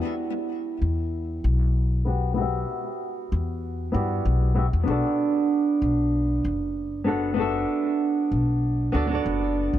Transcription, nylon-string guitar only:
0, 0, Header, 1, 2, 480
1, 0, Start_track
1, 0, Key_signature, 1, "minor"
1, 0, Tempo, 625000
1, 1827, Time_signature, 4, 2, 24, 8
1, 7518, End_track
2, 0, Start_track
2, 0, Title_t, "Nylon-string guitar"
2, 0, Program_c, 0, 24
2, 0, Note_on_c, 0, 59, 86
2, 0, Note_on_c, 0, 64, 82
2, 0, Note_on_c, 0, 66, 78
2, 0, Note_on_c, 0, 67, 82
2, 0, Note_on_c, 0, 74, 90
2, 1543, Note_off_c, 0, 59, 0
2, 1551, Note_off_c, 0, 64, 0
2, 1558, Note_off_c, 0, 66, 0
2, 1564, Note_off_c, 0, 67, 0
2, 1571, Note_off_c, 0, 74, 0
2, 1573, Note_on_c, 0, 59, 66
2, 1578, Note_on_c, 0, 64, 62
2, 1587, Note_on_c, 0, 66, 62
2, 1594, Note_on_c, 0, 67, 62
2, 1597, Note_off_c, 0, 64, 0
2, 1600, Note_on_c, 0, 78, 77
2, 1787, Note_off_c, 0, 59, 0
2, 1796, Note_on_c, 0, 59, 91
2, 1800, Note_off_c, 0, 66, 0
2, 1804, Note_off_c, 0, 67, 0
2, 1807, Note_off_c, 0, 78, 0
2, 1810, Note_on_c, 0, 64, 82
2, 1824, Note_on_c, 0, 66, 85
2, 1838, Note_on_c, 0, 67, 81
2, 1850, Note_off_c, 0, 64, 0
2, 1854, Note_on_c, 0, 76, 94
2, 2985, Note_off_c, 0, 59, 0
2, 2999, Note_off_c, 0, 66, 0
2, 3006, Note_off_c, 0, 67, 0
2, 3009, Note_on_c, 0, 59, 71
2, 3013, Note_off_c, 0, 76, 0
2, 3016, Note_on_c, 0, 64, 63
2, 3023, Note_on_c, 0, 66, 64
2, 3030, Note_on_c, 0, 67, 63
2, 3037, Note_on_c, 0, 74, 73
2, 3471, Note_off_c, 0, 59, 0
2, 3475, Note_off_c, 0, 64, 0
2, 3478, Note_off_c, 0, 66, 0
2, 3482, Note_off_c, 0, 67, 0
2, 3485, Note_off_c, 0, 74, 0
2, 3490, Note_on_c, 0, 59, 78
2, 3496, Note_on_c, 0, 64, 79
2, 3503, Note_on_c, 0, 66, 74
2, 3511, Note_on_c, 0, 67, 75
2, 3516, Note_off_c, 0, 64, 0
2, 3519, Note_on_c, 0, 76, 87
2, 3568, Note_off_c, 0, 59, 0
2, 3575, Note_off_c, 0, 66, 0
2, 3579, Note_off_c, 0, 67, 0
2, 3583, Note_off_c, 0, 76, 0
2, 3713, Note_on_c, 0, 59, 88
2, 3729, Note_on_c, 0, 62, 87
2, 3742, Note_on_c, 0, 66, 81
2, 3757, Note_on_c, 0, 69, 80
2, 3770, Note_on_c, 0, 74, 95
2, 5383, Note_off_c, 0, 59, 0
2, 5391, Note_off_c, 0, 62, 0
2, 5398, Note_off_c, 0, 66, 0
2, 5405, Note_off_c, 0, 69, 0
2, 5409, Note_on_c, 0, 59, 69
2, 5412, Note_off_c, 0, 74, 0
2, 5417, Note_on_c, 0, 62, 65
2, 5425, Note_on_c, 0, 66, 63
2, 5431, Note_on_c, 0, 69, 66
2, 5438, Note_on_c, 0, 78, 83
2, 5627, Note_off_c, 0, 59, 0
2, 5635, Note_off_c, 0, 62, 0
2, 5636, Note_on_c, 0, 59, 87
2, 5639, Note_off_c, 0, 66, 0
2, 5642, Note_off_c, 0, 69, 0
2, 5646, Note_off_c, 0, 78, 0
2, 5651, Note_on_c, 0, 62, 86
2, 5665, Note_on_c, 0, 66, 77
2, 5679, Note_on_c, 0, 69, 82
2, 5693, Note_on_c, 0, 76, 102
2, 6825, Note_off_c, 0, 59, 0
2, 6832, Note_off_c, 0, 62, 0
2, 6839, Note_off_c, 0, 66, 0
2, 6846, Note_off_c, 0, 69, 0
2, 6851, Note_on_c, 0, 59, 83
2, 6853, Note_off_c, 0, 76, 0
2, 6857, Note_on_c, 0, 62, 74
2, 6865, Note_on_c, 0, 66, 78
2, 6872, Note_on_c, 0, 69, 79
2, 6878, Note_on_c, 0, 74, 95
2, 6957, Note_off_c, 0, 59, 0
2, 6960, Note_off_c, 0, 62, 0
2, 6964, Note_off_c, 0, 66, 0
2, 6966, Note_on_c, 0, 59, 83
2, 6968, Note_off_c, 0, 69, 0
2, 6971, Note_off_c, 0, 74, 0
2, 6980, Note_on_c, 0, 62, 74
2, 6994, Note_on_c, 0, 66, 73
2, 7010, Note_on_c, 0, 69, 73
2, 7023, Note_on_c, 0, 74, 85
2, 7518, Note_off_c, 0, 59, 0
2, 7518, Note_off_c, 0, 62, 0
2, 7518, Note_off_c, 0, 66, 0
2, 7518, Note_off_c, 0, 69, 0
2, 7518, Note_off_c, 0, 74, 0
2, 7518, End_track
0, 0, End_of_file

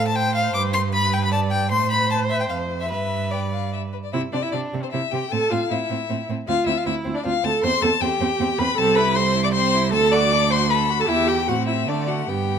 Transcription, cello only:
0, 0, Header, 1, 2, 480
1, 0, Start_track
1, 0, Tempo, 388350
1, 674, Time_signature, 3, 2, 24, 8
1, 2604, Tempo, 402955
1, 5964, Tempo, 385109
1, 13644, Tempo, 400802
1, 15439, End_track
2, 0, Start_track
2, 0, Title_t, "Cello"
2, 0, Program_c, 0, 42
2, 0, Note_on_c, 0, 45, 77
2, 666, Note_off_c, 0, 45, 0
2, 673, Note_on_c, 0, 43, 81
2, 2115, Note_on_c, 0, 45, 70
2, 2134, Note_off_c, 0, 43, 0
2, 3072, Note_off_c, 0, 45, 0
2, 3079, Note_on_c, 0, 41, 57
2, 3566, Note_on_c, 0, 43, 64
2, 3584, Note_off_c, 0, 41, 0
2, 4781, Note_off_c, 0, 43, 0
2, 5023, Note_on_c, 0, 48, 69
2, 5117, Note_off_c, 0, 48, 0
2, 5260, Note_on_c, 0, 48, 61
2, 5353, Note_off_c, 0, 48, 0
2, 5496, Note_on_c, 0, 48, 61
2, 5589, Note_off_c, 0, 48, 0
2, 5735, Note_on_c, 0, 48, 64
2, 5828, Note_off_c, 0, 48, 0
2, 5975, Note_on_c, 0, 48, 65
2, 6071, Note_off_c, 0, 48, 0
2, 6211, Note_on_c, 0, 48, 63
2, 6307, Note_off_c, 0, 48, 0
2, 6458, Note_on_c, 0, 45, 70
2, 6553, Note_off_c, 0, 45, 0
2, 6696, Note_on_c, 0, 45, 63
2, 6792, Note_off_c, 0, 45, 0
2, 6934, Note_on_c, 0, 45, 61
2, 7030, Note_off_c, 0, 45, 0
2, 7176, Note_on_c, 0, 45, 59
2, 7272, Note_off_c, 0, 45, 0
2, 7417, Note_on_c, 0, 45, 68
2, 7513, Note_off_c, 0, 45, 0
2, 7657, Note_on_c, 0, 45, 69
2, 7753, Note_off_c, 0, 45, 0
2, 7900, Note_on_c, 0, 38, 76
2, 7995, Note_off_c, 0, 38, 0
2, 8135, Note_on_c, 0, 38, 71
2, 8231, Note_off_c, 0, 38, 0
2, 8380, Note_on_c, 0, 38, 70
2, 8475, Note_off_c, 0, 38, 0
2, 8625, Note_on_c, 0, 38, 70
2, 8719, Note_off_c, 0, 38, 0
2, 8864, Note_on_c, 0, 38, 73
2, 8959, Note_off_c, 0, 38, 0
2, 9102, Note_on_c, 0, 38, 79
2, 9197, Note_off_c, 0, 38, 0
2, 9339, Note_on_c, 0, 40, 88
2, 9434, Note_off_c, 0, 40, 0
2, 9572, Note_on_c, 0, 40, 79
2, 9667, Note_off_c, 0, 40, 0
2, 9809, Note_on_c, 0, 40, 80
2, 9904, Note_off_c, 0, 40, 0
2, 10048, Note_on_c, 0, 40, 73
2, 10144, Note_off_c, 0, 40, 0
2, 10289, Note_on_c, 0, 40, 87
2, 10385, Note_off_c, 0, 40, 0
2, 10529, Note_on_c, 0, 40, 84
2, 10625, Note_off_c, 0, 40, 0
2, 10771, Note_on_c, 0, 36, 90
2, 12202, Note_on_c, 0, 38, 91
2, 12220, Note_off_c, 0, 36, 0
2, 13642, Note_off_c, 0, 38, 0
2, 13650, Note_on_c, 0, 40, 86
2, 14114, Note_on_c, 0, 45, 76
2, 14132, Note_off_c, 0, 40, 0
2, 14585, Note_on_c, 0, 50, 67
2, 14603, Note_off_c, 0, 45, 0
2, 15072, Note_off_c, 0, 50, 0
2, 15082, Note_on_c, 0, 43, 65
2, 15439, Note_off_c, 0, 43, 0
2, 15439, End_track
0, 0, End_of_file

